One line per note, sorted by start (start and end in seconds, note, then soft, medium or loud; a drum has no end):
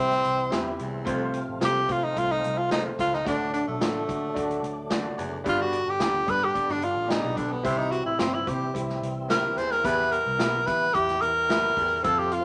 0.00 0.21 C2 medium
0.00 1.05 E3 medium
0.00 1.05 G3 medium
0.00 0.27 C4 medium
0.00 1.04 C4 loud
0.00 3.22 C4 medium
0.00 0.27 E4 medium
0.00 1.05 E4 medium
0.00 0.27 G4 medium
0.00 0.27 E5 medium
0.11 snare soft
0.11 closed hi-hat medium
0.24 0.49 C2 medium
0.24 closed hi-hat medium
0.50 0.76 E2 medium
0.50 0.74 G2 medium
0.50 0.81 C4 medium
0.50 0.82 E4 medium
0.50 0.82 G4 medium
0.50 0.82 E5 medium
0.50 snare loud
0.50 closed hi-hat medium
0.79 1.03 C2 medium
0.79 1.02 E2 medium
0.79 closed hi-hat medium
1.05 1.42 C2 medium
1.05 1.29 F2 medium
1.05 1.84 C3 medium
1.05 3.24 F3 medium
1.05 1.36 A3 loud
1.05 5.41 A3 medium
1.05 1.36 C4 loud
1.05 1.36 F4 loud
1.05 3.24 F4 medium
1.05 1.37 C5 loud
1.05 kick loud
1.05 closed hi-hat medium
1.34 closed hi-hat medium
1.49 1.60 A1 medium
1.60 1.85 C2 medium
1.60 1.76 A3 medium
1.60 1.76 C4 medium
1.60 1.76 F4 medium
1.60 1.76 C5 medium
1.60 snare loud
1.60 closed hi-hat loud
1.65 1.93 G4 loud
1.88 2.13 C3 medium
1.88 2.04 A3 medium
1.88 2.04 C4 medium
1.88 2.04 F4 medium
1.88 2.06 F4 loud
1.88 2.04 C5 medium
1.88 kick medium
1.88 closed hi-hat medium
2.04 2.20 D#4 medium
2.15 2.40 C2 loud
2.15 2.46 A3 medium
2.15 2.46 C4 medium
2.15 2.46 F4 medium
2.15 2.33 F4 loud
2.15 2.46 C5 medium
2.15 kick medium
2.15 closed hi-hat medium
2.32 2.59 D#4 medium
2.44 2.91 C2 medium
2.44 closed hi-hat medium
2.58 2.71 F4 medium
2.70 2.93 E2 medium
2.70 3.01 A3 medium
2.70 3.01 C4 medium
2.70 2.84 D#4 medium
2.70 3.01 F4 medium
2.70 3.01 C5 medium
2.70 snare loud
2.70 closed hi-hat medium
2.99 3.22 C#2 medium
2.99 3.21 D2 medium
2.99 3.16 F4 loud
2.99 kick medium
2.99 closed hi-hat medium
3.14 3.27 D#4 medium
3.14 snare soft
3.24 3.61 D2 loud
3.24 3.48 D2 medium
3.24 4.04 D3 medium
3.24 7.62 D3 medium
3.24 5.44 F#3 medium
3.24 3.55 A3 medium
3.24 3.56 D4 medium
3.24 7.61 D4 medium
3.24 3.52 D4 medium
3.24 3.56 F#4 medium
3.24 3.56 D5 loud
3.24 kick loud
3.24 closed hi-hat medium
3.54 3.66 D4 medium
3.54 closed hi-hat medium
3.68 3.79 B1 medium
3.68 5.00 A3 medium
3.80 4.05 A1 medium
3.80 3.96 A3 medium
3.80 3.96 D4 medium
3.80 3.96 F#4 medium
3.80 3.96 D5 medium
3.80 snare loud
3.80 closed hi-hat medium
4.07 4.32 D3 medium
4.07 4.23 A3 medium
4.07 4.23 D4 medium
4.07 4.23 F#4 medium
4.07 4.23 D5 medium
4.07 kick medium
4.07 closed hi-hat medium
4.34 4.60 D2 medium
4.34 4.65 A3 medium
4.34 4.65 D4 medium
4.34 4.65 F#4 medium
4.34 4.66 D5 loud
4.34 kick medium
4.34 closed hi-hat medium
4.51 closed hi-hat medium
4.63 5.10 D2 loud
4.63 closed hi-hat medium
4.90 5.13 F#2 medium
4.90 5.21 A3 medium
4.90 5.21 D4 medium
4.90 5.21 F#4 medium
4.90 5.21 D5 loud
4.90 snare loud
4.90 closed hi-hat medium
5.18 5.42 F#1 medium
5.18 5.40 E2 medium
5.18 closed hi-hat medium
5.44 5.81 G1 loud
5.44 6.23 G2 medium
5.44 5.67 G2 medium
5.44 9.81 G3 medium
5.44 5.75 B3 loud
5.44 7.63 B3 medium
5.44 5.75 D4 medium
5.44 5.75 G4 medium
5.44 5.75 D5 loud
5.44 kick loud
5.44 closed hi-hat medium
5.49 5.63 F4 medium
5.62 5.91 F#4 medium
5.73 closed hi-hat medium
5.86 5.98 G1 medium
5.86 6.32 G4 loud
5.99 6.23 D2 loud
5.99 6.15 B3 medium
5.99 6.15 D4 medium
5.99 6.15 G4 medium
5.99 6.15 D5 medium
5.99 snare loud
5.99 closed hi-hat medium
6.26 6.51 G2 medium
6.26 6.42 B3 medium
6.26 6.42 D4 medium
6.26 6.42 G4 medium
6.26 6.42 D5 medium
6.26 kick medium
6.26 closed hi-hat medium
6.30 6.45 B4 loud
6.44 6.73 G4 medium
6.54 6.85 B3 medium
6.54 6.85 D4 medium
6.54 6.85 G4 medium
6.54 6.85 D5 medium
6.54 kick medium
6.54 closed hi-hat medium
6.68 6.80 G1 medium
6.68 6.86 D4 medium
6.68 snare soft
6.82 6.94 G1 medium
6.82 7.13 F4 medium
6.82 closed hi-hat medium
6.96 7.19 A1 medium
7.08 7.32 E2 medium
7.08 7.39 B3 medium
7.08 7.39 D4 medium
7.08 7.39 D#4 medium
7.08 7.39 G4 medium
7.08 7.40 D5 medium
7.08 snare loud
7.08 closed hi-hat medium
7.24 7.35 B1 medium
7.37 7.61 B1 medium
7.37 7.59 D2 medium
7.37 7.53 D4 medium
7.37 kick medium
7.37 closed hi-hat medium
7.52 7.65 B3 medium
7.63 8.00 C2 medium
7.63 8.42 C3 medium
7.63 7.87 C3 medium
7.63 12.00 E3 medium
7.63 7.94 C4 medium
7.63 9.82 C4 medium
7.63 7.80 C4 medium
7.63 7.94 E4 medium
7.63 12.01 E4 medium
7.63 7.94 G4 medium
7.63 7.95 E5 loud
7.63 kick loud
7.63 closed hi-hat medium
7.78 7.93 D#4 medium
7.91 8.05 F#4 medium
7.91 closed hi-hat medium
8.06 8.18 A1 medium
8.06 8.21 E4 medium
8.19 8.43 G1 medium
8.19 8.34 C4 medium
8.19 8.36 C4 medium
8.19 8.34 E4 medium
8.19 8.35 G4 medium
8.19 8.35 E5 medium
8.19 snare loud
8.19 closed hi-hat medium
8.34 8.50 E4 medium
8.46 8.71 C3 medium
8.46 8.62 C4 medium
8.46 8.62 E4 medium
8.46 8.62 G4 medium
8.46 8.75 G4 medium
8.46 8.62 C5 medium
8.46 kick medium
8.46 closed hi-hat medium
8.74 8.98 C2 medium
8.74 9.04 C4 medium
8.74 9.04 E4 medium
8.74 9.05 G4 medium
8.74 9.05 E5 medium
8.74 kick medium
8.74 closed hi-hat medium
8.90 snare soft
9.02 9.49 C2 medium
9.02 closed hi-hat medium
9.28 9.51 G2 medium
9.28 9.59 C4 medium
9.28 9.59 E4 medium
9.28 9.59 G4 medium
9.28 9.59 A#4 loud
9.28 9.60 E5 medium
9.28 snare loud
9.28 closed hi-hat medium
9.56 9.80 D#2 medium
9.56 9.79 E2 medium
9.56 9.73 C5 loud
9.56 closed hi-hat medium
9.71 9.86 A#4 loud
9.71 snare soft
9.83 10.20 E2 loud
9.83 10.07 E2 medium
9.83 10.62 E3 medium
9.83 10.14 B3 medium
9.83 12.03 B3 medium
9.83 10.14 E4 medium
9.83 10.14 G4 medium
9.83 10.13 B4 loud
9.83 10.15 E5 loud
9.83 kick loud
9.83 closed hi-hat loud
10.12 10.68 A#4 loud
10.12 closed hi-hat medium
10.26 10.38 C2 medium
10.38 10.63 B1 medium
10.38 10.54 B3 medium
10.38 10.54 E4 medium
10.38 10.54 G4 medium
10.38 10.54 E5 medium
10.38 snare loud
10.38 closed hi-hat loud
10.66 10.91 E3 medium
10.66 10.82 B3 medium
10.66 10.82 E4 medium
10.66 10.82 G4 medium
10.66 10.96 B4 loud
10.66 10.82 E5 medium
10.66 kick medium
10.66 closed hi-hat medium
10.93 11.18 E2 medium
10.93 11.24 B3 medium
10.93 11.24 E4 medium
10.93 11.24 G4 medium
10.93 11.23 G4 loud
10.93 11.25 E5 medium
10.93 kick medium
10.93 closed hi-hat medium
11.09 snare soft
11.09 closed hi-hat medium
11.21 11.69 E2 medium
11.21 12.03 A#4 loud
11.21 closed hi-hat medium
11.48 11.72 G2 medium
11.48 11.79 B3 medium
11.48 11.79 E4 medium
11.48 11.80 G4 medium
11.48 11.80 E5 medium
11.48 snare loud
11.48 closed hi-hat medium
11.77 11.99 E2 medium
11.77 12.00 E2 medium
11.77 kick medium
11.77 open hi-hat medium
12.03 12.40 F2 loud
12.03 12.26 F2 medium
12.03 12.45 F3 medium
12.03 12.45 A3 medium
12.03 12.34 C4 loud
12.03 12.45 C4 medium
12.03 12.34 F4 medium
12.03 12.45 F4 medium
12.03 12.34 A4 medium
12.03 12.20 A4 medium
12.03 12.34 F5 loud
12.03 kick loud
12.03 closed hi-hat medium
12.18 12.34 G4 medium
12.31 12.45 F4 medium
12.31 closed hi-hat medium